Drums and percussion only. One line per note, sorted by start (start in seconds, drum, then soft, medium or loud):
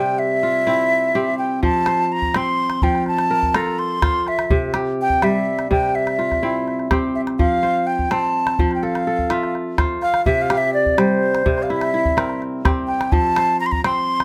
1.63 calabash thump medium
1.86 calabash click medium
2.22 calabash thump medium
2.34 calabash click medium
2.70 calabash click soft
2.82 calabash thump medium
2.95 calabash click soft
3.06 calabash click soft
3.18 calabash click medium
3.43 calabash thump soft
3.54 calabash click medium
3.66 calabash click soft
3.79 calabash click soft
4.02 calabash thump medium
4.02 calabash click medium
4.27 calabash click soft
4.39 calabash click medium
4.50 calabash thump medium
4.74 calabash click medium
5.10 calabash thump medium
5.22 calabash click medium
5.59 calabash click soft
5.71 calabash thump medium
5.71 calabash click soft
5.83 calabash click soft
6.07 calabash click soft
6.20 calabash click soft
6.32 calabash thump soft
6.32 calabash click soft
6.68 calabash click soft
6.79 calabash click soft
6.91 calabash thump medium
6.91 calabash click medium
7.27 calabash click soft
7.39 calabash thump medium
7.99 calabash thump medium
8.11 calabash click medium
8.47 calabash click medium
8.59 calabash thump medium
8.71 calabash click soft
8.83 calabash click soft
8.95 calabash click soft
9.19 calabash thump soft
9.30 calabash click medium
9.43 calabash click soft
9.55 calabash click soft
9.78 calabash thump medium
9.78 calabash click medium
10.02 calabash click soft
10.14 calabash click soft
10.26 calabash thump medium
10.50 calabash click medium
10.86 calabash thump medium
10.98 calabash click medium
11.35 calabash click medium
11.46 calabash thump medium
11.58 calabash click soft
11.70 calabash click soft
11.81 calabash click medium
12.06 calabash thump medium
12.18 calabash click medium
12.29 calabash click soft
12.42 calabash click soft
12.65 calabash thump medium
12.65 calabash click medium
12.89 calabash click soft
13.01 calabash click medium
13.12 calabash thump medium
13.36 calabash click medium
13.72 calabash thump medium
13.84 calabash click medium
14.20 calabash click medium